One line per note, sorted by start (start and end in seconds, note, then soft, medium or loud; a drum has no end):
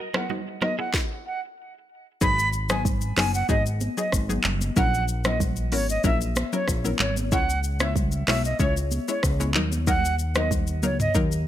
0.00 0.10 F#3 medium
0.00 0.10 A#3 medium
0.00 0.10 D#4 medium
0.00 0.11 A#4 loud
0.14 0.38 F#3 medium
0.14 0.38 A#3 medium
0.14 0.38 D#4 medium
0.14 0.24 E4 medium
0.14 0.24 G#4 medium
0.14 0.38 A#4 medium
0.14 0.28 F#5 medium
0.14 cross-stick loud
0.14 high conga medium
0.30 0.41 D#4 medium
0.30 0.40 F#4 medium
0.30 low conga medium
0.61 0.86 F#3 medium
0.61 0.86 A#3 medium
0.61 0.86 D#4 medium
0.61 0.72 F#4 medium
0.61 0.72 A#4 medium
0.61 0.86 A#4 medium
0.61 0.76 D#5 medium
0.61 cross-stick medium
0.61 high conga medium
0.79 0.88 E4 medium
0.79 0.88 G#4 medium
0.79 0.92 F#5 medium
0.94 kick loud
0.94 snare medium
1.26 1.40 F#5 medium
2.21 3.13 G#1 loud
2.21 2.66 F#3 loud
2.21 2.66 B3 medium
2.21 2.66 D#4 medium
2.21 2.66 G#4 loud
2.21 2.49 B5 loud
2.21 kick loud
2.21 shaker medium
2.39 shaker medium
2.53 shaker soft
2.69 2.93 F#3 medium
2.69 2.93 B3 medium
2.69 2.94 D#4 medium
2.69 2.94 G#4 medium
2.69 2.83 G#5 medium
2.69 cross-stick loud
2.69 high conga medium
2.69 shaker soft
2.85 kick loud
2.85 low conga medium
2.85 shaker medium
3.01 shaker medium
3.17 3.44 F#1 medium
3.17 3.41 F#3 medium
3.17 3.41 B3 medium
3.17 3.41 D#4 medium
3.17 3.42 G#4 medium
3.17 3.32 G#5 medium
3.17 cross-stick medium
3.17 clap loud
3.17 open hi-hat medium
3.17 high conga medium
3.34 3.47 F#5 medium
3.34 shaker medium
3.49 3.89 G#1 loud
3.49 3.73 F#3 medium
3.49 3.73 B3 medium
3.49 3.73 D#4 medium
3.49 3.73 G#4 loud
3.49 3.63 D#5 medium
3.49 kick loud
3.49 shaker medium
3.66 shaker medium
3.81 high conga medium
3.81 shaker medium
3.97 4.21 F#3 medium
3.97 4.21 B3 medium
3.97 4.21 D#4 medium
3.97 4.21 G#4 medium
3.97 4.11 D#5 medium
3.97 shaker medium
4.12 4.39 G#1 loud
4.12 kick medium
4.12 cross-stick medium
4.12 shaker medium
4.29 4.53 F#3 medium
4.29 4.53 B3 medium
4.29 4.53 D#4 medium
4.29 4.53 G#4 medium
4.29 high conga medium
4.29 shaker medium
4.44 4.71 F#1 loud
4.44 clap medium
4.44 low conga medium
4.61 high conga medium
4.61 shaker medium
4.76 5.74 A#1 loud
4.76 5.21 F#3 medium
4.76 5.21 C#4 medium
4.76 5.21 E4 medium
4.76 5.21 A#4 loud
4.76 5.04 F#5 loud
4.76 kick loud
4.76 shaker medium
4.94 shaker medium
5.08 shaker soft
5.24 5.49 F#3 medium
5.24 5.49 C#4 medium
5.24 5.49 E4 medium
5.24 5.49 A#4 medium
5.24 5.39 D#5 medium
5.24 cross-stick loud
5.24 high conga medium
5.24 shaker soft
5.40 kick loud
5.40 low conga medium
5.40 shaker medium
5.56 shaker medium
5.72 5.99 G#1 loud
5.72 5.96 F#3 medium
5.72 5.97 C#4 medium
5.72 5.97 E4 medium
5.72 5.97 A#4 medium
5.72 5.87 C#5 medium
5.72 open hi-hat medium
5.72 high conga medium
5.89 6.03 D#5 medium
5.89 shaker medium
6.04 6.44 A#1 loud
6.04 6.28 F#3 loud
6.04 6.29 C#4 medium
6.04 6.29 E4 medium
6.04 6.29 A#4 loud
6.04 6.19 E5 medium
6.04 kick loud
6.04 shaker medium
6.21 shaker medium
6.36 cross-stick loud
6.36 high conga medium
6.36 shaker medium
6.53 6.76 F#3 medium
6.53 6.76 C#4 medium
6.53 6.76 E4 medium
6.53 6.77 A#4 medium
6.53 6.66 C#5 medium
6.53 shaker medium
6.68 6.94 A#1 loud
6.68 kick medium
6.68 cross-stick medium
6.68 shaker medium
6.85 7.08 F#3 medium
6.85 7.08 C#4 medium
6.85 7.08 E4 medium
6.85 7.09 A#4 medium
6.85 high conga medium
6.85 shaker medium
6.99 7.34 G#1 medium
6.99 7.15 C#5 medium
6.99 clap loud
6.99 low conga medium
7.16 high conga medium
7.16 shaker medium
7.32 8.24 C#2 loud
7.32 7.76 G#3 loud
7.32 7.77 C#4 medium
7.32 7.77 E4 medium
7.32 7.77 C#5 loud
7.32 7.60 F#5 loud
7.32 kick loud
7.32 shaker medium
7.50 shaker medium
7.64 shaker soft
7.80 8.04 G#3 medium
7.80 8.04 C#4 medium
7.80 8.04 E4 medium
7.80 8.04 C#5 medium
7.80 7.94 E5 medium
7.80 cross-stick loud
7.80 high conga medium
7.80 shaker soft
7.96 kick loud
7.96 low conga medium
7.96 shaker medium
8.12 shaker medium
8.27 8.54 B1 medium
8.27 8.52 G#3 medium
8.27 8.52 C#4 medium
8.27 8.52 E4 medium
8.27 8.52 C#5 medium
8.27 8.42 E5 medium
8.27 cross-stick medium
8.27 clap loud
8.27 open hi-hat medium
8.27 high conga medium
8.45 8.58 D#5 medium
8.45 shaker medium
8.59 9.00 C#2 loud
8.59 8.84 G#3 medium
8.59 8.84 C#4 medium
8.59 8.84 E4 medium
8.59 8.84 C#5 loud
8.59 8.74 C#5 loud
8.59 kick loud
8.59 shaker medium
8.77 shaker medium
8.91 high conga medium
8.91 shaker medium
9.08 9.32 G#3 medium
9.08 9.32 C#4 medium
9.08 9.32 E4 medium
9.08 9.32 C#5 medium
9.08 9.22 C#5 medium
9.08 shaker medium
9.23 9.57 C#2 loud
9.23 kick loud
9.23 cross-stick loud
9.23 shaker medium
9.40 9.64 G#3 medium
9.40 9.64 C#4 medium
9.40 9.64 E4 medium
9.40 9.64 C#5 medium
9.40 high conga medium
9.40 shaker medium
9.54 10.85 D#2 loud
9.54 9.85 F#3 loud
9.54 9.85 A#3 medium
9.54 9.85 D#4 medium
9.54 9.85 A#4 loud
9.54 clap loud
9.54 low conga medium
9.72 high conga medium
9.72 shaker medium
9.87 10.32 F#3 medium
9.87 10.32 A#3 medium
9.87 10.32 D#4 medium
9.87 10.32 A#4 loud
9.87 10.15 F#5 loud
9.87 kick loud
9.87 low conga medium
9.87 shaker medium
10.05 shaker medium
10.19 shaker soft
10.35 10.59 F#3 medium
10.35 10.59 A#3 medium
10.35 10.60 D#4 medium
10.35 10.60 A#4 medium
10.35 10.49 D#5 medium
10.35 cross-stick loud
10.35 high conga medium
10.35 shaker soft
10.51 kick loud
10.51 low conga medium
10.51 shaker medium
10.67 shaker medium
10.83 11.09 C#2 medium
10.83 11.07 F#3 medium
10.83 11.07 A#3 medium
10.83 11.07 D#4 medium
10.83 11.08 A#4 medium
10.83 10.98 C#5 medium
10.83 high conga medium
10.83 shaker soft
11.00 11.13 D#5 medium
11.00 mid tom medium
11.00 shaker medium
11.15 11.48 D#2 loud
11.15 11.39 F#3 medium
11.15 11.39 A#3 medium
11.15 11.39 D#4 medium
11.15 11.39 A#4 loud
11.15 kick loud
11.15 shaker medium
11.32 shaker medium